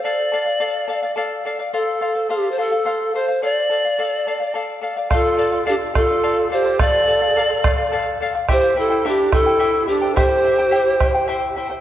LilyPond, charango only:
\new Staff \with { instrumentName = "Charango" } { \time 6/8 \key d \minor \tempo 4. = 71 <a' d'' f''>8 <a' d'' f''>16 <d'' f''>16 <a' d'' f''>8 <a' d'' f''>16 <d'' f''>16 <a' d'' f''>8 <a' d'' f''>16 <d'' f''>16 | <a' c'' f''>8 <a' c'' f''>16 <c'' f''>16 <a' c'' f''>8 <a' c'' f''>16 <c'' f''>16 <a' c'' f''>8 <a' c'' f''>16 <c'' f''>16 | <a' d'' f''>8 <a' d'' f''>16 <d'' f''>16 <a' d'' f''>8 <a' d'' f''>16 <d'' f''>16 <a' d'' f''>8 <a' d'' f''>16 <d'' f''>16 | <a' d'' f''>8 <a' d'' f''>16 <d'' f''>16 <a' d'' f''>8 <a' d'' f''>16 <d'' f''>16 <a' d'' f''>8 <a' d'' f''>16 <d'' f''>16 |
<a' d'' f''>8 <a' d'' f''>16 <d'' f''>16 <a' d'' f''>8 <a' d'' f''>16 <d'' f''>16 <a' d'' f''>8 <a' d'' f''>16 <d'' f''>16 | <e' g' c'' e'' g''>8 <e' c'' e'' g''>16 <e' c'' g''>16 <e' g' c'' e'' g''>8 <e' c'' e'' g''>16 <e' c'' g''>16 <e' g' c'' e'' g''>8 <e' c'' e'' g''>16 <e' c'' g''>16 | <e' g' c'' e'' g''>8 <e' c'' e'' g''>16 <e' c'' g''>16 <e' g' c'' e'' g''>8 <e' c'' e'' g''>16 <e' c'' g''>16 <e' g' c'' e'' g''>8 <e' c'' e'' g''>16 <e' c'' g''>16 | }